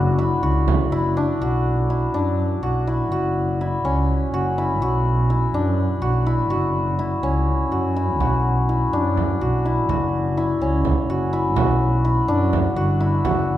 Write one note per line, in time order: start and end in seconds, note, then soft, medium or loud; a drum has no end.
0.00 0.39 F#1 loud
0.00 1.16 D4 medium
0.00 0.18 E4 medium
0.00 0.42 F#4 medium
0.18 0.92 E4 medium
0.43 0.88 C#2 medium
0.43 1.41 F#4 medium
0.68 frame drum medium
0.92 1.37 F#1 medium
0.92 1.90 E4 medium
1.17 2.14 D4 medium
1.41 2.10 B1 medium
1.41 2.62 F#4 medium
1.90 2.87 E4 medium
2.14 2.59 F#2 medium
2.14 3.91 D4 medium
2.63 3.13 B1 medium
2.63 3.11 F#4 medium
2.87 3.60 E4 medium
3.11 3.80 F#1 medium
3.11 4.33 F#4 medium
3.61 4.58 E4 medium
3.85 4.29 C#2 medium
3.85 5.60 C#4 medium
4.33 4.83 F#1 medium
4.33 4.81 F#4 medium
4.58 5.30 E4 medium
4.81 5.49 B1 medium
4.81 6.01 F#4 medium
5.30 6.26 E4 medium
5.54 5.98 F#2 medium
5.54 7.29 D4 medium
6.02 6.51 B1 medium
6.02 6.50 F#4 medium
6.26 6.98 E4 medium
6.49 7.18 F#1 medium
6.49 7.71 F#4 medium
6.99 7.96 E4 medium
7.22 7.67 C#2 medium
7.22 8.99 C#4 medium
7.71 8.22 F#2 medium
7.71 8.20 F#4 medium
7.96 8.69 E4 medium
8.20 8.89 B1 medium
8.20 9.41 F#4 medium
8.20 frame drum medium
8.69 9.65 E4 medium
8.93 9.37 F#2 medium
8.93 10.67 D4 medium
9.17 frame drum soft
9.41 9.90 B1 medium
9.41 9.89 F#4 medium
9.41 frame drum soft
9.65 10.37 E4 medium
9.89 10.57 F#1 medium
9.89 11.09 F#4 medium
9.89 frame drum medium
10.37 11.32 E4 medium
10.61 11.05 C#2 medium
10.61 12.34 C#4 medium
10.85 frame drum medium
11.08 11.58 F#1 medium
11.08 11.56 F#4 medium
11.08 frame drum soft
11.33 12.04 E4 medium
11.56 12.24 B1 medium
11.56 12.76 F#4 medium
11.56 frame drum medium
12.05 13.00 E4 medium
12.28 12.72 F#2 medium
12.28 13.57 D4 medium
12.53 frame drum medium
12.76 13.25 G1 medium
12.76 13.25 F#4 medium
12.76 frame drum soft
13.00 13.57 E4 medium
13.24 13.57 F#1 medium
13.24 13.57 F#4 medium
13.24 frame drum medium